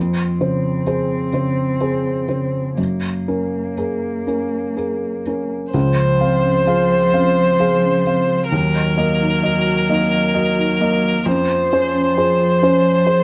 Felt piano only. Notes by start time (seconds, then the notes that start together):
Already playing: F2
0.40 C#3 C5
0.87 G#4 C5
1.33 C#3 C5
1.81 G#4 C5
2.28 C#3 C5
2.78 F#2
3.28 C#4 A#4
3.77 G#4 A#4
4.27 C#4 A#4
4.76 G#4 A#4
5.27 C#4 A#4
5.74 C#2
6.21 C4 F5
6.66 G#4 F5
7.13 C4 F5
7.60 G#4 F5
8.07 C4 F5
8.52 D#2
8.97 A#3 D#5
9.43 F#4 D#5
9.89 A#3 D#5
10.34 F#4 D#5
10.81 A#3 D#5
11.26 F2
11.72 C#4 C5
12.17 G#4 C5
12.62 C#4 C5
13.06 G#4 C5